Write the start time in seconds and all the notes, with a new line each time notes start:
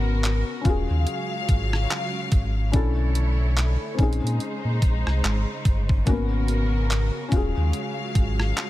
Already playing: G#1 C#3 B3 C#4 F#4 A#4
0.24 clap, closed hi-hat
0.61 C#3 C#4 F4, kick
0.65 D#1 F#3 G#3 F#4 G#4 F5, closed hi-hat
0.90 D#2
1.07 closed hi-hat
1.49 G#1, kick, closed hi-hat
1.73 cross-stick
1.91 clap, closed hi-hat
2.32 G#1, kick, closed hi-hat
2.72 B1 D3 A3 C#4 D4 E4 A4 C#5, kick, closed hi-hat
3.15 closed hi-hat
3.57 clap, closed hi-hat
3.94 C4 C#4
3.99 A#1 C#3 G#3 D#4 G#4 C5, kick, closed hi-hat
4.13 closed hi-hat
4.23 A#2, closed hi-hat
4.40 closed hi-hat
4.64 A#2
4.82 A#1, kick, closed hi-hat
5.06 C2, cross-stick
5.24 G#1, clap, closed hi-hat
5.65 G1, kick, closed hi-hat
5.89 kick
6.05 G#1 A#3 B3 C#4 F#4 A#4, kick, closed hi-hat
6.12 B3
6.48 closed hi-hat
6.91 clap, closed hi-hat
7.28 D#1 C#4 F4, kick, closed hi-hat
7.33 F#3 G#3 F#4 G#4 F5
7.57 D#2
7.73 closed hi-hat
8.15 G#1, kick, closed hi-hat
8.40 cross-stick
8.57 clap, closed hi-hat